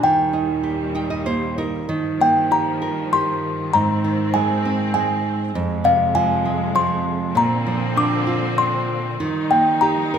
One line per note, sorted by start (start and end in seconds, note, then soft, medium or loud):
0.03 1.89 D#2 medium
0.03 1.88 A#2 medium
0.03 1.86 D#3 medium
0.03 1.89 G3 medium
0.03 1.23 G5 medium
0.33 0.94 D#4 soft
0.64 1.86 G4 soft
0.95 1.57 D#4 soft
0.95 1.10 G5 medium
1.10 1.25 D#5 medium
1.26 1.88 A#3 soft
1.26 1.56 C5 medium
1.58 1.89 D#4 soft
1.58 1.87 A#4 medium
1.89 3.72 G2 medium
1.89 3.70 D#3 medium
1.89 5.50 D#3 medium
1.89 3.72 F3 medium
2.21 3.40 A#3 soft
2.21 2.50 G5 medium
2.51 3.12 G4 soft
2.51 3.15 A#5 medium
2.82 3.71 A#4 soft
3.13 3.72 G4 medium
3.13 3.76 C6 medium
3.73 5.52 G#2 medium
3.73 5.50 G#2 medium
3.73 5.52 C4 medium
3.73 4.36 A#5 medium
4.04 5.21 D#3 soft
4.34 4.93 G#3 soft
4.34 4.90 G#5 medium
4.65 5.52 C4 soft
4.94 5.53 G#3 medium
4.94 5.36 G#5 medium
5.53 7.33 F2 medium
5.53 7.32 F2 medium
5.53 7.33 C3 medium
5.53 7.33 G#3 medium
5.84 7.02 C3 medium
5.84 5.98 F5 medium
6.15 6.74 F3 medium
6.15 6.77 G#5 medium
6.45 7.33 G#3 medium
6.75 7.34 F3 medium
6.75 7.38 C6 medium
7.35 9.16 A#2 medium
7.35 9.18 D3 medium
7.35 9.18 A#3 medium
7.35 9.18 C4 medium
7.35 7.99 A#5 medium
7.66 8.86 F3 soft
7.97 8.57 D4 medium
7.97 8.60 D6 medium
8.27 9.17 F4 soft
8.58 9.18 D4 soft
8.58 9.01 C6 medium
9.20 10.18 D#3 medium
9.20 10.18 F3 medium
9.20 10.18 G3 medium
9.20 10.18 D#4 medium
9.51 10.18 A#3 soft
9.51 9.65 G5 medium
9.81 10.18 G4 medium
9.81 10.18 A#5 medium
10.14 10.18 A#4 medium